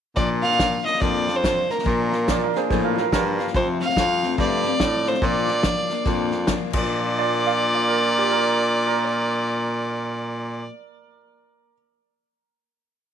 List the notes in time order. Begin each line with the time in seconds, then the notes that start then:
0.16 A#2 F3 A#3 D4 F4 D5, kick, snare
0.42 D4 F4 F5, snare
0.46 A#3
0.52 snare
0.59 F3 A#3 D4 F4, kick, snare, hi-hat pedal
0.85 A#3 D4 F4 D#5, snare
0.94 snare
1.00 F2 A#2 F3 A#3 D4 F4 D5, kick, snare
1.27 A#3 D4 F4, snare
1.36 C5
1.42 F3 A#3 D4 F4, kick, snare, hi-hat pedal
1.68 A#3 D4 F4 A#4, snare
1.78 snare
1.83 A#2 F3 A#3 D4 F4, kick, snare
2.11 A#3 F4, snare
2.25 F3 A#3 A#4 C#5, kick, snare, hi-hat pedal
2.30 D4 F4 D5
2.43 A#4 D5
2.54 A#3 D4 F4 G#4 C5, snare
2.70 A2 A#2 F3 A#3 D4 F4 G#4 C5, kick, snare
2.84 F4 A#4
2.95 A#3 D4 F4, snare
2.99 A#4
3.12 G2 F3 A#3 D4 F4 A#4, kick, snare, hi-hat pedal
3.38 A#3 D4 F4, snare
3.47 snare
3.54 F2 C3 F3 A3 C4 F4 C5, kick, snare
3.80 F3 A3 C4 F4 F5, snare
3.89 snare
3.96 F2 F3 A3 C4 F4, kick, snare, hi-hat pedal
4.22 F3 A3 C4 F4, snare
4.38 F2 G2 C3 F3 A3 C4 F4 D5, kick, snare
4.64 F3 A3 C4 F4, snare
4.79 A2 F3 A3 C4 F4, kick, snare, hi-hat pedal
5.06 F3 A3 C4 F4 C5, snare
5.14 snare
5.22 A#2 F3 A#3 D4 F4 D5, kick, snare
5.47 A#3 D4 F4, snare
5.63 F3 A#3 D4 F4, kick, snare, hi-hat pedal
5.89 A#3 D4 F4, snare
6.05 F2 A#2 F3 A#3 D4 F4, kick, snare
6.31 A#3 D4 F4, snare
6.47 F3 A#3 D4 F4, kick, snare, hi-hat pedal
6.71 A#2 F3, kick, crash
6.75 A#3 D5
6.80 D4 F4
7.19 D5
7.47 F5
7.75 D5
7.88 A#4
8.18 G4
8.32 A#4
8.87 A#4